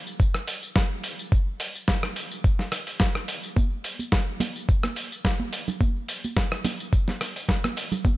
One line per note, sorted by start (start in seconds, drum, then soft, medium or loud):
0.07 tambourine soft
0.20 kick loud
0.20 tambourine soft
0.34 cross-stick medium
0.47 open hi-hat loud
0.47 tambourine medium
0.63 tambourine soft
0.76 kick loud
0.76 snare loud
0.76 tambourine soft
1.04 open hi-hat loud
1.04 tambourine medium
1.19 tambourine soft
1.32 kick loud
1.32 tambourine soft
1.60 open hi-hat loud
1.60 tambourine medium
1.75 tambourine soft
1.88 kick loud
1.88 snare loud
1.88 tambourine soft
2.03 cross-stick medium
2.16 open hi-hat loud
2.16 tambourine medium
2.31 tambourine soft
2.44 kick loud
2.44 tambourine soft
2.59 snare soft
2.72 cross-stick medium
2.72 open hi-hat loud
2.72 tambourine medium
2.87 open hi-hat medium
2.87 tambourine soft
3.00 kick loud
3.00 snare loud
3.00 tambourine soft
3.15 cross-stick medium
3.28 open hi-hat loud
3.28 tambourine medium
3.43 tambourine soft
3.56 kick loud
3.56 tambourine medium
3.56 tambourine soft
3.56 high conga loud
3.71 tambourine soft
3.84 open hi-hat loud
3.84 tambourine medium
3.99 tambourine soft
3.99 high conga medium
4.12 kick loud
4.12 snare loud
4.12 tambourine medium
4.12 tambourine soft
4.28 tambourine soft
4.40 open hi-hat loud
4.40 tambourine medium
4.40 high conga loud
4.40 low conga medium
4.56 tambourine soft
4.69 kick loud
4.69 tambourine soft
4.83 cross-stick medium
4.83 tambourine soft
4.83 high conga medium
4.96 open hi-hat loud
4.96 tambourine medium
5.12 tambourine soft
5.25 kick loud
5.25 snare loud
5.25 tambourine medium
5.25 tambourine soft
5.40 tambourine soft
5.40 high conga medium
5.53 open hi-hat loud
5.53 tambourine medium
5.68 tambourine soft
5.68 low conga medium
5.81 kick loud
5.81 tambourine soft
5.81 tambourine medium
5.81 high conga medium
5.96 tambourine soft
6.08 open hi-hat loud
6.08 tambourine medium
6.08 tambourine loud
6.24 tambourine soft
6.24 high conga medium
6.37 kick loud
6.37 snare loud
6.37 tambourine soft
6.37 tambourine medium
6.52 cross-stick medium
6.52 tambourine soft
6.64 open hi-hat loud
6.64 tambourine medium
6.64 high conga medium
6.64 low conga medium
6.80 tambourine soft
6.93 kick loud
6.93 tambourine medium
6.93 tambourine soft
7.08 snare soft
7.08 tambourine soft
7.08 high conga medium
7.21 cross-stick medium
7.21 open hi-hat loud
7.21 tambourine medium
7.36 open hi-hat medium
7.36 tambourine soft
7.49 kick loud
7.49 snare loud
7.49 tambourine medium
7.49 tambourine soft
7.64 cross-stick medium
7.64 tambourine soft
7.64 high conga medium
7.76 open hi-hat loud
7.76 tambourine medium
7.92 tambourine soft
7.92 low conga medium
8.05 kick loud
8.05 tambourine medium
8.05 tambourine soft
8.05 high conga loud